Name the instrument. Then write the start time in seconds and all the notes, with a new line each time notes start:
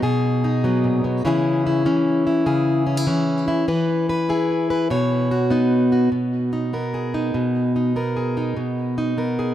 steel-string acoustic guitar
0.02 B2 G#4
0.44 D#4
0.64 F#3 B3
0.84 A#2
1.04 B2
1.25 C#3 E3 C#4 E4 G#4
1.67 E4
1.86 E3 C#4
2.27 E4
2.46 C#3 G#4
2.87 C#4
2.97 E4
3.07 E3 C#4
3.48 E4
3.68 E3 B4
4.09 B4
4.29 E4 G#4
4.70 B4
4.90 B2 C#5
5.31 F#4
5.50 B3 D#4
5.92 F#4
6.12 B2
6.53 D#4
6.73 B3 A#4
6.94 G#4
7.14 D#4
7.34 B2
7.76 D#4
7.96 B3 A#4
8.17 G#4
8.37 D#4
8.56 B2
8.98 D#4
9.18 B3 A#4
9.39 G#4